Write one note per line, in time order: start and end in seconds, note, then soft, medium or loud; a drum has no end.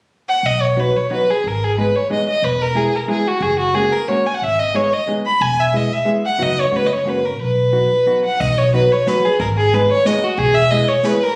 0.29 0.48 F#5 medium
0.43 0.87 B1 medium
0.43 0.63 D#5 medium
0.61 0.81 C#5 medium
0.76 0.94 F#3 soft
0.76 0.94 B3 soft
0.76 0.94 D#4 soft
0.76 0.94 F#4 soft
0.76 0.98 B4 medium
0.97 1.11 C#5 medium
1.10 1.28 F#3 soft
1.10 1.28 B3 soft
1.10 1.28 D#4 soft
1.10 1.28 F#4 medium
1.10 1.32 B4 medium
1.30 1.49 G#4 medium
1.44 1.86 G#1 medium
1.44 1.66 A#4 medium
1.64 1.78 G#4 medium
1.78 1.94 G#3 medium
1.78 1.94 B3 soft
1.78 1.94 D#4 soft
1.78 1.95 G#4 medium
1.78 1.97 B4 medium
1.96 2.10 C#5 medium
2.10 2.27 G#3 medium
2.10 2.27 B3 soft
2.10 2.27 D#4 soft
2.10 2.27 G#4 soft
2.10 2.27 D#5 medium
2.29 2.46 D#5 medium
2.42 2.85 E1 medium
2.42 2.63 B4 medium
2.62 2.78 A#4 medium
2.75 2.92 G#3 soft
2.75 2.92 B3 soft
2.75 2.92 E4 medium
2.75 2.92 G#4 medium
2.75 2.97 G#4 medium
2.96 3.09 A#4 medium
3.08 3.25 G#3 medium
3.08 3.25 B3 soft
3.08 3.25 E4 soft
3.08 3.25 G#4 medium
3.08 3.29 G#4 medium
3.28 3.44 F#4 medium
3.40 3.84 F#1 medium
3.40 3.58 G#4 medium
3.59 3.76 F#4 medium
3.74 3.91 G#3 soft
3.74 3.91 A#3 soft
3.74 3.92 C#4 soft
3.74 3.92 F#4 medium
3.74 3.94 G#4 medium
3.92 4.10 A#4 medium
4.08 4.25 G#3 soft
4.08 4.25 A#3 soft
4.08 4.26 C#4 soft
4.08 4.26 F#4 medium
4.08 4.28 C#5 medium
4.26 4.35 G#5 medium
4.36 4.45 F#5 medium
4.42 4.85 G#1 medium
4.42 4.61 E5 medium
4.59 4.77 D#5 medium
4.74 4.92 G#3 soft
4.74 4.92 B3 soft
4.74 4.92 D#4 soft
4.74 4.92 G#4 medium
4.74 4.95 C#5 medium
4.94 5.09 D#5 medium
5.07 5.25 G#3 soft
5.07 5.25 B3 soft
5.07 5.25 D#4 soft
5.07 5.25 G#4 soft
5.26 5.43 B5 medium
5.41 5.83 E1 medium
5.41 5.62 G#5 medium
5.60 5.78 E5 medium
5.73 5.90 G#3 medium
5.73 5.91 B3 soft
5.73 5.91 E4 soft
5.73 5.91 G#4 soft
5.73 5.94 D#5 medium
5.93 6.07 E5 medium
6.05 6.23 G#3 medium
6.05 6.23 B3 medium
6.05 6.23 E4 soft
6.05 6.23 G#4 soft
6.26 6.44 F#5 medium
6.38 6.60 F#1 medium
6.38 6.66 F#3 medium
6.38 6.66 B3 medium
6.38 6.66 D#4 medium
6.38 6.66 F#4 medium
6.43 6.62 D#5 medium
6.60 6.77 C#5 medium
6.71 7.39 F#1 medium
6.71 6.89 G#3 soft
6.71 6.89 A#3 soft
6.71 6.89 C#4 soft
6.71 6.89 F#4 medium
6.76 6.88 B4 medium
6.87 6.94 D#5 medium
6.93 7.10 C#5 medium
7.05 7.23 G#3 medium
7.05 7.23 A#3 soft
7.05 7.23 C#4 soft
7.05 7.23 F#4 soft
7.05 7.27 B4 medium
7.26 7.40 A#4 medium
7.39 7.83 B1 medium
7.39 8.21 B4 medium
7.72 7.90 F#3 soft
7.72 7.90 B3 soft
7.72 7.90 D#4 soft
7.72 7.90 F#4 medium
8.06 8.24 F#3 soft
8.06 8.24 B3 medium
8.06 8.24 D#4 soft
8.06 8.24 F#4 medium
8.25 8.42 F#5 medium
8.40 8.84 B1 medium
8.40 8.60 D#5 medium
8.40 kick medium
8.40 crash medium
8.58 8.74 C#5 medium
8.74 8.91 F#3 medium
8.74 8.91 B3 medium
8.74 8.91 D#4 medium
8.74 8.91 F#4 medium
8.74 8.94 B4 medium
8.74 closed hi-hat soft
8.92 9.10 C#5 medium
9.06 9.24 F#3 medium
9.06 9.24 B3 medium
9.06 9.24 D#4 medium
9.06 9.24 F#4 medium
9.06 9.27 B4 medium
9.06 snare medium
9.06 closed hi-hat soft
9.25 9.40 G#4 medium
9.40 9.82 G#1 loud
9.40 9.48 A#4 medium
9.40 kick medium
9.40 closed hi-hat soft
9.57 9.76 G#4 medium
9.72 9.90 G#3 medium
9.72 9.90 B3 medium
9.72 9.90 D#4 medium
9.72 9.91 G#4 medium
9.72 9.91 B4 medium
9.72 closed hi-hat soft
9.92 10.08 C#5 loud
10.05 10.23 G#3 medium
10.05 10.23 B3 medium
10.05 10.23 D#4 medium
10.05 10.23 G#4 medium
10.05 10.25 D#5 medium
10.05 snare medium
10.05 closed hi-hat soft
10.24 10.40 F#4 medium
10.37 10.80 E1 loud
10.37 10.56 G#4 loud
10.37 kick medium
10.37 closed hi-hat soft
10.54 10.72 E5 loud
10.71 10.88 G#3 medium
10.71 10.88 B3 soft
10.71 10.88 E4 medium
10.71 10.88 G#4 medium
10.71 10.90 D#5 medium
10.71 closed hi-hat soft
10.88 11.07 C#5 medium
11.03 11.21 G#3 soft
11.03 11.21 B3 medium
11.03 11.21 E4 medium
11.03 11.21 G#4 medium
11.03 11.25 B4 medium
11.03 snare medium
11.03 closed hi-hat soft
11.23 11.36 A#4 medium